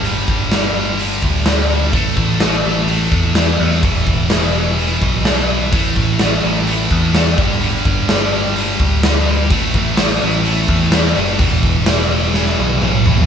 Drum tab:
HH |o---o---o---o---|o---o---o---o---|o---o---o---o---|o---o---o---o---|
SD |----o-------o---|----o-------o--o|----o-------o---|----o-------o--o|
T1 |----------------|----------------|----------------|----------------|
T2 |----------------|----------------|----------------|----------------|
FT |----------------|----------------|----------------|----------------|
BD |--o-------o-----|o-o-------o-----|o-o-------o-----|o-o-------o---o-|

HH |o---o---o---o---|o---o---o---o---|o---o-----------|
SD |----o-------o---|----o-------o--o|----o---oo------|
T1 |----------------|----------------|-----------o----|
T2 |----------------|----------------|------------o---|
FT |----------------|----------------|--------------oo|
BD |--o-------o-----|o-o-------o-----|o-o-------------|